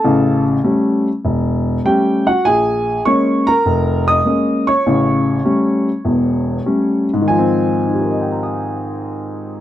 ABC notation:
X:1
M:4/4
L:1/8
Q:"Swing" 1/4=100
K:Ab
V:1 name="Grand piano"
[=A=a] z4 z [Gg] [_G_g] | [Aa]2 [dd'] [Bb]2 [ee']2 [dd']- | [dd']6- [dd'] z | [A,,E,F,Ca]8 |]
V:2 name="Grand piano"
[=A,,,^C,]2 [G,=A,^C] z =E,,,2 [G,A,C] z | B,,,2 [A,B,D] z F,,,2 [A,B,D] z | [=A,,,^C,]2 [G,=A,^C] z [=E,,,=E,,]2 [G,A,C] z | z2 [EGBegbe']6 |]